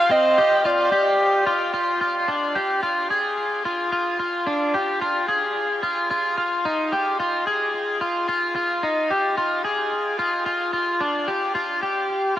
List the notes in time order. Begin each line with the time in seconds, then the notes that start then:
Already playing: F5
0.10 C4 D#5
0.38 G4
0.65 F4 D5
0.92 G4
1.46 F4
1.74 F4
2.01 F4
2.28 D4
2.55 G4
2.83 F4
3.10 G#4
3.65 F4
3.92 F4
4.19 F4
4.47 D4
4.74 G4
5.01 F4
5.28 G#4
5.83 F4
6.10 F4
6.37 F4
6.65 D#4
6.92 G4
7.20 F4
7.47 G#4
8.01 F4
8.29 F4
8.55 F4
8.83 D#4
9.10 G4
9.37 F4
9.65 G#4
10.19 F4
10.46 F4
10.73 F4
11.01 D4
11.28 G4
11.55 F4
11.83 G4